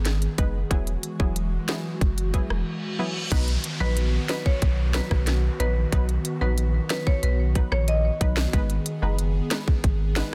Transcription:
Already playing: sub bass G#1, analog synth pad D#3 B3 G#4
0.05 snare, closed hi-hat
0.22 closed hi-hat
0.38 sub bass F#1, synth stab G#3 B3 D#4 B4, kick, closed hi-hat
0.70 sub bass E1, analog synth pad E3 G#3 F#4, synth stab F#3 B3 E4 G#4, kick, closed hi-hat
0.87 closed hi-hat
1.03 closed hi-hat
1.19 sub bass E1, synth stab F#3 B3 E4 G#4, kick
1.36 closed hi-hat
1.68 synth stab F#3 B3 E4 G#4, snare, closed hi-hat
2.01 sub bass F#1, kick, closed hi-hat, reverse cymbal
2.18 closed hi-hat
2.34 synth stab F#3 B3 E4 G#4, kick, closed hi-hat
2.50 sub bass E1, cross-stick
2.99 synth stab F#3 B3 E4 G#4
3.31 sub bass B1, analog synth pad D#3 B3 F#4, synth stab F#3 B3 D#4 B4, kick, closed hi-hat, crash, downlifter
3.48 closed hi-hat
3.64 closed hi-hat
3.80 sub bass A#1, synth stab F#3 B3 D#4 B4, marimba B4
3.97 closed hi-hat
4.29 synth stab F#3 B3 D#4 B4, marimba B4, snare, closed hi-hat
4.46 marimba C#5, kick
4.62 sub bass B1, kick, closed hi-hat
4.94 synth stab F#3 B3 D#4 B4, marimba B4, snare, closed hi-hat
5.11 sub bass B1, kick, cross-stick
5.27 snare, closed hi-hat
5.60 sub bass A#1, synth stab F#3 B3 D#4 B4, marimba B4, closed hi-hat
5.92 sub bass B1, synth stab F#3 B3 D#4 B4, analog synth pad B3, kick, closed hi-hat
6.09 closed hi-hat
6.25 closed hi-hat
6.41 sub bass A#1, synth stab F#3 B3 D#4 B4, marimba B4
6.58 closed hi-hat
6.90 synth stab F#3 B3 D#4 B4, marimba B4, snare, closed hi-hat
7.07 marimba C#5, kick
7.23 sub bass B1, marimba B4, closed hi-hat
7.55 synth stab F#3 B3 D#4 B4, kick, closed hi-hat
7.72 sub bass A#1, marimba C#5, cross-stick
7.88 marimba D#5, closed hi-hat
8.21 sub bass B1, synth stab F#3 B3 D#4 B4, kick, closed hi-hat
8.37 snare
8.53 sub bass G#1, synth stab G#3 B3 D#4 B4, analog synth pad B3 G#4, kick, closed hi-hat
8.70 closed hi-hat
8.86 closed hi-hat
9.02 sub bass F#1, synth stab G#3 B3 D#4 B4
9.19 closed hi-hat
9.51 synth stab G#3 B3 D#4 B4, snare, closed hi-hat
9.68 kick
9.84 sub bass G#1, kick, closed hi-hat
10.16 synth stab G#3 B3 D#4 B4, snare, closed hi-hat

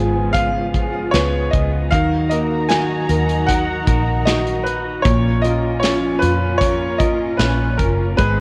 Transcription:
Already playing: fingered electric bass G#1, clean electric guitar C#3 G#3 B3 F4 G#4, felt piano C#3 G#3 F4 G#4, string section C#3 F3 G#3 B3, grand piano G#5
0.33 clean electric guitar G#3 B3 F4 G#4, grand piano F5, kick, closed hi-hat
0.74 clean electric guitar B3 F4 G#4, kick, closed hi-hat
1.11 fingered electric bass C#2, clean electric guitar C#3 G#3 B3, felt piano B4, grand piano C#5, snare, closed hi-hat
1.15 clean electric guitar F4 G#4
1.51 fingered electric bass C#2, clean electric guitar F4 G#4, grand piano D#5, kick, closed hi-hat
1.56 clean electric guitar B3
1.91 fingered electric bass D#2, felt piano D#3, clean electric guitar D#3 F#3 D#4 F#4 A#4, string section D#3 D#4 F#4 A#5, grand piano F5, kick, closed hi-hat
2.29 felt piano A#3, clean electric guitar F#4 A#4, grand piano D#5, closed hi-hat
2.33 clean electric guitar D#4
2.69 clean electric guitar D#3 F#3 D#4 F#4 A#4, felt piano F#4, grand piano G#5, snare, closed hi-hat
3.09 fingered electric bass D#2, felt piano A#4, closed hi-hat
3.29 closed hi-hat
3.47 clean electric guitar F#3 D#4 F#4, grand piano F#5, kick, closed hi-hat
3.51 clean electric guitar A#4
3.87 fingered electric bass A#1, clean electric guitar D#4 F#4 A#4, kick, closed hi-hat
4.25 clean electric guitar D#3 F#3 D#4 F#4 A#4, felt piano F#4, grand piano D#5, snare, closed hi-hat
4.47 closed hi-hat
4.63 clean electric guitar F#4, grand piano B4, closed hi-hat
4.67 clean electric guitar D#4
5.02 fingered electric bass A#1, string section A#2 C#4 F4, felt piano A#2, clean electric guitar A#2 F3 A#3 C#4 F4, grand piano C#5, kick, closed hi-hat
5.06 clean electric guitar A#4
5.41 clean electric guitar C#4 F4 A#4, felt piano F4, grand piano D#5, closed hi-hat
5.46 clean electric guitar A#3
5.79 clean electric guitar A#2 F3, felt piano C#4, grand piano C#5, closed hi-hat
5.84 clean electric guitar C#4 F4, snare
6.19 fingered electric bass F2, felt piano F4, grand piano B4, closed hi-hat
6.58 clean electric guitar A#3, grand piano C#5, kick, closed hi-hat
6.62 clean electric guitar C#4 F4 A#4
6.99 clean electric guitar A#3 C#4 F4 A#4, grand piano D#5, kick, closed hi-hat
7.37 fingered electric bass A#1, clean electric guitar A#2 F3 C#4 F4, felt piano C#4, grand piano B4, snare, closed hi-hat
7.77 fingered electric bass F#1, clean electric guitar A#3 C#4 F4 A#4, grand piano A#4, kick, closed hi-hat
8.17 fingered electric bass G#1, clean electric guitar G#2 D#3 G#3 B3 D#4 G#4, felt piano G#3, string section G#3 B3 D#4, grand piano B4, kick, closed hi-hat, swell

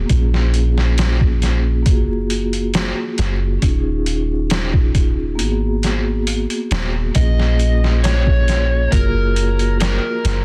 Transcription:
Already playing: vibraphone A#3 B3 F#4 G#4
0.06 808-style bass A#1, vibraphone A#3 C#4, kick, closed hi-hat
0.12 vibraphone F4 G#4
0.34 snare
0.54 closed hi-hat
0.78 snare
0.98 snare, closed hi-hat
1.21 kick
1.42 snare, closed hi-hat
1.83 808-style bass F#1, vibraphone A#3 F4, kick, closed hi-hat
1.88 vibraphone F#4 G#4
2.30 closed hi-hat
2.53 closed hi-hat
2.74 snare, closed hi-hat
3.18 808-style bass F#1, snare, closed hi-hat
3.59 808-style bass D#1, vibraphone C#4 D#4, kick, closed hi-hat
3.65 vibraphone F4 G#4
4.06 closed hi-hat
4.50 snare, closed hi-hat
4.73 kick
4.95 kick, closed hi-hat
5.35 vibraphone A#3 B3, closed hi-hat
5.39 808-style bass G#1, vibraphone F#4
5.44 vibraphone G#4
5.83 snare, closed hi-hat
6.27 closed hi-hat
6.50 closed hi-hat
6.71 808-style bass D#1, snare, closed hi-hat
7.12 808-style bass A#1, vibraphone A#3 C#4, electric slide guitar D#5, kick, closed hi-hat
7.17 vibraphone F4 G#4
7.39 snare
7.59 closed hi-hat
7.84 snare
8.04 electric slide guitar C#5, snare, closed hi-hat
8.27 kick
8.48 snare, closed hi-hat
8.88 vibraphone A#3 F4, electric slide guitar A#4, kick
8.92 808-style bass F#1, vibraphone F#4, closed hi-hat
8.97 vibraphone G#4
9.36 closed hi-hat
9.59 closed hi-hat
9.80 electric slide guitar A#4, snare, closed hi-hat
10.25 808-style bass F#1, snare, closed hi-hat

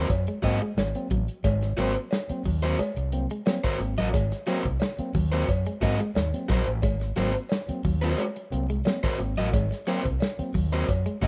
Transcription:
0.10 fingered electric bass F#2, kick, closed hi-hat, cowbell
0.27 clean electric guitar G#3, closed hi-hat
0.42 fingered electric bass G#2, tine electric piano F#3 A#3 C4, overdriven electric guitar F#4 A#4 D#5, muted clean electric guitar stroke, kick, closed hi-hat
0.61 clean electric guitar G#3, closed hi-hat
0.77 fingered electric bass G#1, tine electric piano G#2 D#3, snare, cowbell
0.95 tine electric piano F#3 A#3 C4, closed hi-hat
1.11 fingered electric bass A1, clean electric guitar F#3, tine electric piano A#3 C4, kick, closed hi-hat
1.28 closed hi-hat
1.44 fingered electric bass G#1, tine electric piano G#2 D#3, clean electric guitar G#3, kick, closed hi-hat, cowbell
1.62 muted clean electric guitar stroke, snare, closed hi-hat
1.77 fingered electric bass G#1, clean electric guitar F#3, tine electric piano F#3 A#3 C4, overdriven electric guitar F#4 A#4 C5, closed hi-hat
1.95 closed hi-hat
2.11 snare, cowbell
2.29 tine electric piano F#3 A#3 C4, muted fingered electric bass stroke, closed hi-hat
2.45 fingered electric bass D#2, tine electric piano G#2 D#3, clean electric guitar F#3, kick, open hi-hat
2.63 tine electric piano F#3 A#3 C4, overdriven electric guitar F#4 A#4 C5, closed hi-hat
2.79 clean electric guitar G#3, muted fingered electric bass stroke, closed hi-hat, cowbell
2.96 fingered electric bass C2, muted clean electric guitar stroke, closed hi-hat
3.12 tine electric piano F#3 A#3 C4, closed hi-hat
3.30 clean electric guitar G#3, closed hi-hat
3.46 clean electric guitar F#3, tine electric piano A#3 C4, snare, cowbell
3.64 tine electric piano G#2 D#3, overdriven electric guitar F#4 A#4 C5, kick, closed hi-hat
3.80 fingered electric bass G#1, tine electric piano A#3 C4, muted clean electric guitar stroke, closed hi-hat
3.98 fingered electric bass A1, clean electric guitar F#3, overdriven electric guitar F#4 A#4 D#5, closed hi-hat
4.13 fingered electric bass G#1, tine electric piano G#2 D#3, clean electric guitar G#3, kick, closed hi-hat, cowbell
4.32 muted clean electric guitar stroke, snare, closed hi-hat
4.47 tine electric piano F#3 A#3 C4, clean electric guitar F#3, overdriven electric guitar F#4 A#4 C5, closed hi-hat
4.65 fingered electric bass C2, tine electric piano A#3 C4, kick, closed hi-hat
4.80 snare, cowbell
4.98 tine electric piano F#3 A#3 C4, muted fingered electric bass stroke, closed hi-hat
5.15 fingered electric bass D#2, tine electric piano G#2 D#3, clean electric guitar F#3, kick, open hi-hat
5.32 tine electric piano F#3 A#3 C4, overdriven electric guitar F#4 A#4 C5, closed hi-hat
5.48 fingered electric bass F#2, kick, closed hi-hat, cowbell
5.66 clean electric guitar G#3, closed hi-hat
5.81 fingered electric bass G#2, tine electric piano F#3 A#3 C4, overdriven electric guitar F#4 A#4 D#5, muted clean electric guitar stroke, kick, closed hi-hat
6.00 clean electric guitar G#3, closed hi-hat
6.15 fingered electric bass D#2, tine electric piano G#2 D#3, snare, cowbell
6.34 tine electric piano F#3 A#3 C4, closed hi-hat
6.49 fingered electric bass A#1, clean electric guitar F#3, tine electric piano A#3 C4, overdriven electric guitar F#4 A#4 C5, kick, closed hi-hat
6.67 fingered electric bass A1, closed hi-hat
6.82 fingered electric bass G#1, tine electric piano G#2 D#3, clean electric guitar G#3, kick, closed hi-hat, cowbell
7.01 muted clean electric guitar stroke, snare, closed hi-hat
7.16 fingered electric bass G#1, tine electric piano F#3 A#3 C4, clean electric guitar F#3, overdriven electric guitar F#4 A#4 C5, closed hi-hat
7.35 tine electric piano A#3 C4, closed hi-hat
7.49 snare, cowbell
7.68 tine electric piano F#3 A#3 C4, muted fingered electric bass stroke, closed hi-hat
7.84 fingered electric bass D#2, tine electric piano G#2 D#3, clean electric guitar F#3, kick, open hi-hat
8.02 tine electric piano F#3 A#3 C4, overdriven electric guitar F#4 A#4 C5, closed hi-hat
8.18 clean electric guitar G#3, closed hi-hat, cowbell
8.36 muted clean electric guitar stroke, closed hi-hat
8.52 fingered electric bass C2, tine electric piano F#3 A#3 C4, closed hi-hat
8.70 clean electric guitar G#3, closed hi-hat
8.85 clean electric guitar F#3, tine electric piano A#3 C4, snare, cowbell
9.03 tine electric piano G#2 D#3, overdriven electric guitar F#4 A#4 C5, kick, closed hi-hat
9.19 fingered electric bass G#1, tine electric piano A#3 C4, muted clean electric guitar stroke, closed hi-hat
9.37 fingered electric bass A1, clean electric guitar F#3, overdriven electric guitar F#4 A#4 D#5, closed hi-hat
9.53 fingered electric bass G#1, tine electric piano G#2 D#3, clean electric guitar G#3, kick, closed hi-hat, cowbell
9.71 muted clean electric guitar stroke, snare, closed hi-hat
9.87 clean electric guitar F#3, tine electric piano F#3 A#3 C4, overdriven electric guitar F#4 A#4 C5, closed hi-hat
10.05 fingered electric bass C2, tine electric piano A#3 C4, kick, closed hi-hat
10.20 snare, cowbell
10.39 tine electric piano F#3 A#3 C4, muted fingered electric bass stroke, closed hi-hat
10.54 fingered electric bass D#2, tine electric piano G#2 D#3, clean electric guitar F#3, kick, open hi-hat
10.72 tine electric piano F#3 A#3 C4, overdriven electric guitar F#4 A#4 C5, closed hi-hat
10.88 fingered electric bass F#2, kick, closed hi-hat, cowbell
11.06 clean electric guitar G#3, closed hi-hat
11.22 fingered electric bass G#2, tine electric piano F#3 A#3 C4, overdriven electric guitar F#4 A#4 D#5, muted clean electric guitar stroke, kick, closed hi-hat

